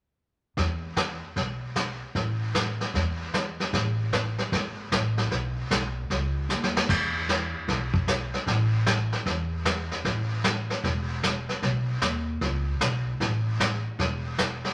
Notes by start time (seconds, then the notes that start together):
0.57 E2, brush sweep, kick, snare
0.96 kick, snare, hi-hat pedal
1.36 B1, brush sweep, kick, snare
1.75 kick, snare, hi-hat pedal
2.15 A1, brush sweep, kick, snare
2.55 kick, snare, hi-hat pedal
2.81 snare
2.94 E2, brush sweep, kick, snare
3.33 kick, snare, hi-hat pedal
3.60 snare
3.73 A1, brush sweep, kick, snare
4.13 kick, snare, hi-hat pedal
4.38 snare
4.52 G#1, brush sweep, kick, snare
4.92 A1, kick, snare, hi-hat pedal
5.17 snare
5.31 B1, brush sweep, kick, snare
5.71 B1, kick, snare, hi-hat pedal
6.10 C#2, brush sweep, kick, snare
6.49 D#2, snare, hi-hat pedal
6.63 snare
6.77 snare
6.89 E2, brush sweep, kick, snare, crash
7.29 kick, snare, hi-hat pedal
7.68 B1, brush sweep, kick, snare
7.94 kick
8.07 kick, snare, hi-hat pedal
8.34 snare
8.46 A1, brush sweep, kick, snare
8.86 kick, snare, hi-hat pedal
9.12 snare
9.26 E2, brush sweep, kick, snare
9.65 kick, snare, hi-hat pedal
9.91 snare
10.05 A1, brush sweep, kick, snare
10.44 kick, snare, hi-hat pedal
10.70 snare
10.84 E1, brush sweep, kick, snare
11.23 kick, snare, hi-hat pedal
11.49 snare
11.62 B1, brush sweep, kick, snare
12.02 D#2, kick, snare, hi-hat pedal
12.41 C#2, brush sweep, kick, snare
12.81 B1, kick, snare, hi-hat pedal
13.20 A1, brush sweep, kick, snare
13.60 kick, snare, hi-hat pedal
13.99 E1, brush sweep, kick, snare
14.38 kick, snare, hi-hat pedal
14.64 snare